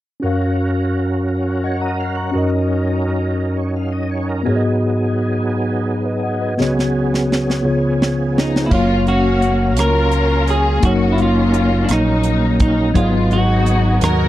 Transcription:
0.20 tine electric piano F#2 C#4 F#4, tonewheel organ F#3 C#4 F#4 A#4
0.24 tine electric piano A#4 F5
1.64 tonewheel organ C#5, tine electric piano D#5 F#5
1.81 tonewheel organ D#5, tine electric piano F#5 A#5
1.99 tonewheel organ F5
2.16 tonewheel organ F#5, tine electric piano A#5 C#6
2.32 tine electric piano F#2 C#4 F#4 A#4, tonewheel organ F#3 C#4 D#4 A#4
2.38 tine electric piano D#5
3.40 tonewheel organ A#4
3.57 tonewheel organ C#5
3.76 tonewheel organ F5
3.92 tonewheel organ D#5
4.11 tonewheel organ C#5
4.29 tonewheel organ A#4
4.43 tine electric piano G#2 B3 F#4, tonewheel organ F#3 B3 D#4 G#4
4.48 tine electric piano G#4 C#5
4.56 tine electric piano D#5
6.05 tine electric piano B4 D#5
6.23 tine electric piano D#5 F#5
6.42 tine electric piano B4 D#5
6.58 tine electric piano C#2 C#3 B3 F#4 G#4 C#5, tonewheel organ F#3 B3 C#4 G#4, snare
6.79 snare
7.14 snare
7.32 snare
7.50 snare
7.62 tine electric piano C#2 C#3 B3 F4 G#4 C#5, tonewheel organ F3 B3 C#4 G#4
8.02 snare
8.38 string section D#4, clean electric guitar D#4, snare
8.56 snare
8.66 tine electric piano A#3 F5, clean electric guitar E4
8.71 fingered electric bass F#1, tonewheel organ F#3 C#4 A#4 F5, tine electric piano F#3 C#5, string section A#3 C#4 F4, clean electric guitar F4, kick, crash
9.07 string section A#3 C#4 F#4, clean electric guitar F#4, closed hi-hat
9.42 closed hi-hat
9.77 fingered electric bass C#2, string section C#4 F4 A#4, clean electric guitar A#4, cross-stick, closed hi-hat
10.12 closed hi-hat
10.47 string section G#4, clean electric guitar G#4, closed hi-hat
10.80 fingered electric bass F#1, tonewheel organ F#3 C#4 D#4 A#4, tine electric piano A#3 D#4, kick, closed hi-hat
10.85 tine electric piano F#3 C#5, string section A#3 C#4 F#4, clean electric guitar F#4
11.12 clean electric guitar E4
11.18 string section A#3 C#4 F4, closed hi-hat
11.22 clean electric guitar F4
11.54 closed hi-hat
11.84 clean electric guitar D4
11.89 fingered electric bass A#1, string section A#3 D#4, clean electric guitar D#4, cross-stick, closed hi-hat
12.23 closed hi-hat
12.60 clean electric guitar D#4, string section D#4, kick, closed hi-hat
12.92 fingered electric bass G#1, tine electric piano G#2 F#3 B3 G#4, tonewheel organ F#3 B3 D#4 G#4, kick, closed hi-hat
12.97 string section B3 F4, clean electric guitar F4, tine electric piano D5
13.05 tine electric piano D#5
13.31 clean electric guitar F#4, string section F#4, closed hi-hat
13.35 string section B3 D#4
13.66 closed hi-hat
14.01 fingered electric bass D#2, string section D#4 F#4 A#4, clean electric guitar A#4, cross-stick, closed hi-hat

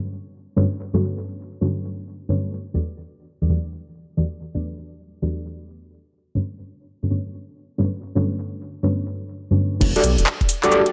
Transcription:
0.56 synth stab G3 D4 F#4 A4 B4 C#5
0.94 synth stab G3 D4 F#4 A4 B4 C#5
1.61 synth stab G3 D4 F#4 A4 B4 C#5
2.29 synth stab G3 D4 F#4 A4 B4 C#5
2.74 synth stab E3 F#4 G4 A4 B4 D5
3.42 synth stab E3 F#4 G4 A4 B4 D5
3.50 synth stab E3 F#4 G4 A4 B4 D5
4.17 synth stab E3 F#4 G4 A4 B4 D5
4.54 synth stab E3 F#4 G4 A4 B4 D5
5.22 synth stab E3 F#4 G4 A4 B4 D5
6.35 synth stab G3 D4 F#4 A4 B4 C#5
7.03 synth stab G3 D4 F#4 A4 B4 C#5
7.11 synth stab G3 D4 F#4 A4 B4 C#5
7.78 synth stab G3 D4 F#4 A4 B4 C#5
8.15 synth stab G3 D4 F#4 A4 B4 C#5
8.83 synth stab G3 D4 F#4 A4 B4 C#5
9.51 synth stab G3 D4 F#4 A4 B4 C#5
9.81 detuned saw bass E1, kick, crash, shaker
9.96 synth stab F#4 G4 A4 D5, closed hi-hat
10.04 detuned saw bass B1, open hi-hat, shaker
10.18 detuned saw bass E1, closed hi-hat, shaker
10.26 clap, shaker
10.41 kick, closed hi-hat
10.49 open hi-hat, shaker
10.63 synth stab F#4 G4 A4 D5, cross-stick, clap, closed hi-hat, shaker
10.71 synth stab F#4 G4 A4 D5, shaker
10.86 closed hi-hat

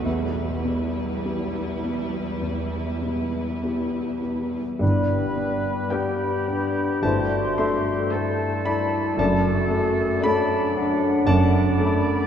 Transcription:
0.05 cello section E2, grand piano E2 E5, viola section G3, violin section E4 B4
0.64 grand piano B2
1.25 grand piano B3 E4 G4
1.84 grand piano B3
2.41 grand piano E2
3.02 grand piano B2
3.63 grand piano B3 E4 G4
4.22 grand piano B3
4.79 double bass section G1, grand piano G2, cello section G2, bassoon G3, french horn section B3 D4, clarinet E4, oboe B4, flute section B5
5.35 grand piano B3, clarinet D4
5.90 viola section G3, bassoon B3, violin section D4 B4, clarinet G4, grand piano G4 B4 G5, oboe G4, flute section B5
6.48 grand piano D4
7.02 double bass section G1, grand piano G2 C5 A5, cello section G2, french horn section A3 E4, bassoon A3, clarinet F#4, flute section C6
7.58 grand piano A3 E5 C6
8.12 viola section A3, violin section C4 A4, clarinet E4, oboe A4, grand piano A4, flute section A5
8.65 grand piano E4 D5 B5, clarinet E4
9.17 double bass section F#1, grand piano F#2 D5 A5, cello section F#2, bassoon A3, french horn section A3 D4, clarinet F#4, oboe A4
9.71 grand piano A3
10.22 bassoon F#3, viola section A3, violin section D4 A4, clarinet D4, grand piano A4 D5 B5, oboe D5, flute section A5
10.76 grand piano D4, flute section F#5
11.27 double bass section F#1, grand piano F#2 D5 A5, cello section F#2, french horn section A3 D4, oboe D5, flute section F#5
11.80 grand piano A3, flute section B5

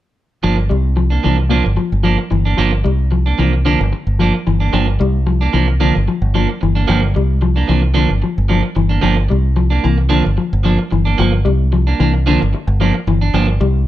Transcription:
0.43 fingered electric bass G1, clean electric guitar F3 A#3 D4
0.58 muted clean electric guitar stroke
0.69 fingered electric bass C2, clean electric guitar G3, muted clean electric guitar stroke
0.96 clean electric guitar F3, muted clean electric guitar stroke
1.10 clean electric guitar A#3 D4
1.23 fingered electric bass C2, clean electric guitar E3 F3 A#3 D4
1.38 muted clean electric guitar stroke
1.49 clean electric guitar A#2 F3 A#3 D4
1.65 fingered electric bass G1, muted clean electric guitar stroke
1.77 clean electric guitar F3, muted clean electric guitar stroke
1.92 fingered electric bass G1
2.03 clean electric guitar F3 A#3 D4
2.18 muted clean electric guitar stroke
2.31 fingered electric bass G1, clean electric guitar E3, muted clean electric guitar stroke
2.45 clean electric guitar A#3 D4
2.57 fingered electric bass G1, clean electric guitar F3 A#3 D4, muted clean electric guitar stroke
2.73 muted clean electric guitar stroke
2.84 fingered electric bass C2, clean electric guitar G3, muted clean electric guitar stroke
3.11 clean electric guitar F3, muted clean electric guitar stroke
3.26 clean electric guitar A#3 D4
3.38 fingered electric bass C2, clean electric guitar E3 F3 A#3 D4
3.53 muted clean electric guitar stroke
3.65 clean electric guitar D3 F3 A#3 D4
3.80 fingered electric bass G1, muted clean electric guitar stroke
3.93 muted clean electric guitar stroke
4.07 fingered electric bass G1
4.19 clean electric guitar F3 A#3 D4
4.34 muted clean electric guitar stroke
4.47 fingered electric bass G1, clean electric guitar E3, muted clean electric guitar stroke
4.60 clean electric guitar A#3 D4
4.73 fingered electric bass G1, clean electric guitar F3 A#3 D4
4.88 muted clean electric guitar stroke
4.99 fingered electric bass C2, clean electric guitar G3, muted clean electric guitar stroke
5.27 clean electric guitar F3, muted clean electric guitar stroke
5.41 clean electric guitar A#3 D4
5.53 fingered electric bass C2, clean electric guitar E3 F3 A#3 D4
5.68 muted clean electric guitar stroke
5.80 clean electric guitar D3 F3 A#3 D4
5.95 fingered electric bass G1, muted clean electric guitar stroke
6.08 clean electric guitar F3, muted clean electric guitar stroke
6.22 fingered electric bass G1
6.34 clean electric guitar F3 A#3 D4
6.49 muted clean electric guitar stroke
6.61 fingered electric bass G1, clean electric guitar E3, muted clean electric guitar stroke
6.75 clean electric guitar A#3 D4
6.87 fingered electric bass G1, clean electric guitar F3 A#3 D4
7.02 muted clean electric guitar stroke
7.14 fingered electric bass C2, clean electric guitar G3, muted clean electric guitar stroke
7.41 clean electric guitar F3, muted clean electric guitar stroke
7.56 clean electric guitar A#3 D4
7.68 fingered electric bass C2, clean electric guitar E3 F3 A#3 D4
7.82 muted clean electric guitar stroke
7.94 clean electric guitar D3 F3 A#3 D4
8.09 fingered electric bass G1, muted clean electric guitar stroke
8.22 clean electric guitar F3, muted clean electric guitar stroke
8.38 fingered electric bass G1
8.49 clean electric guitar F3 A#3 D4
8.63 muted clean electric guitar stroke
8.75 fingered electric bass G1, clean electric guitar E3, muted clean electric guitar stroke
8.89 clean electric guitar A#3 D4
9.01 fingered electric bass G1, clean electric guitar F3 A#3 D4
9.17 muted clean electric guitar stroke
9.29 fingered electric bass C2, clean electric guitar G3, muted clean electric guitar stroke
9.56 clean electric guitar F3, muted clean electric guitar stroke
9.70 clean electric guitar A#3 D4
9.84 fingered electric bass C2, clean electric guitar E3 A#3
9.98 muted clean electric guitar stroke
10.09 clean electric guitar D3 F3 A#3 D4
10.24 fingered electric bass G1, muted clean electric guitar stroke
10.37 clean electric guitar F3, muted clean electric guitar stroke
10.53 fingered electric bass G1
10.63 clean electric guitar F3 A#3 D4
10.79 muted clean electric guitar stroke
10.91 fingered electric bass G1, clean electric guitar E3, muted clean electric guitar stroke
11.05 clean electric guitar A#3 D4
11.18 fingered electric bass G1, clean electric guitar F3 A#3, muted clean electric guitar stroke
11.33 muted clean electric guitar stroke
11.45 fingered electric bass C2, clean electric guitar G3, muted clean electric guitar stroke
11.72 clean electric guitar F3, muted clean electric guitar stroke
11.87 clean electric guitar A#3 D4
12.00 fingered electric bass C2, clean electric guitar E3 A#3 D4
12.14 muted clean electric guitar stroke
12.26 clean electric guitar D3 F3 A#3 D4
12.41 fingered electric bass G1, muted clean electric guitar stroke
12.53 muted clean electric guitar stroke
12.67 fingered electric bass G1
12.80 clean electric guitar F3 A#3 D4
12.94 muted clean electric guitar stroke
13.07 fingered electric bass G1, clean electric guitar E3, muted clean electric guitar stroke
13.21 clean electric guitar D4, muted clean electric guitar stroke
13.34 fingered electric bass G1, clean electric guitar F3 A#3 D4
13.48 muted clean electric guitar stroke
13.61 fingered electric bass C2, clean electric guitar G3, muted clean electric guitar stroke

